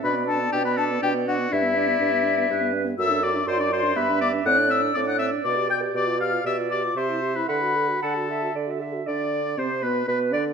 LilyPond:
<<
  \new Staff \with { instrumentName = "Flute" } { \time 3/4 \key g \major \tempo 4 = 121 b''8 a''8 g''16 b''16 a''8 g''8 fis''8 | e''2~ e''8 r8 | e'''8 d'''8 c'''16 d'''16 c'''8 b''8 d'''8 | fis'''8 e'''8 d'''16 fis'''16 e'''8 d'''8 g'''8 |
d'''8 f'''8 e'''8 d'''8 c'''8. b''16 | b''4 a''4 r4 | d''4 c''8 b'8 b'8 d''8 | }
  \new Staff \with { instrumentName = "Clarinet" } { \time 3/4 \key g \major d''2. | e''8 d''4. b'4 | a'8 r8 d''4 e''4 | d''2.~ |
d''4 d''4 e''4 | fis''4 fis''8 e''8 d''16 e''16 e''8 | d''4 c''8 b'8 b'8 d''8 | }
  \new Staff \with { instrumentName = "Oboe" } { \time 3/4 \key g \major b'8 a'8 g'16 b'16 a'8 g'8 fis'8 | e'2~ e'8 r8 | e''8 d''8 c''16 d''16 c''8 b'8 d''8 | fis''8 e''8 d''16 fis''16 e''8 d''8 g''8 |
d''8 f''8 e''8 d''8 c''8. b'16 | b'4 a'4 r4 | d''4 c''8 b'8 b'8 d''8 | }
  \new Staff \with { instrumentName = "French horn" } { \time 3/4 \key g \major d'16 b16 d'16 b16 d'16 b16 d'16 b16 d'16 b16 d'16 b16 | d'16 b16 d'16 b16 d'16 b16 d'16 b16 d'16 b16 d'16 b16 | fis'16 d'16 fis'16 d'16 fis'16 d'16 fis'16 d'16 b16 d'16 b16 d'16 | c'16 d'16 c'16 d'16 c'16 d'16 c'16 d'16 b'16 g'16 b'16 g'16 |
g'16 f'16 g'16 f'16 g'16 f'16 g'16 f'16 g'16 e'16 g'16 e'16 | a'16 fis'16 a'16 fis'16 a'16 fis'16 a'16 fis'16 a'16 fis'16 a'16 fis'16 | d'4 c'8 b8 b8 d'8 | }
  \new Staff \with { instrumentName = "Bassoon" } { \clef bass \time 3/4 \key g \major b,4 b,4 b,4 | g,4 g,4 g,4 | fis,4 fis,4 g,4 | a,4 a,4 b,4 |
b,4 b,4 c4 | d4 d4 d4 | d4 c8 b,8 b,8 d8 | }
>>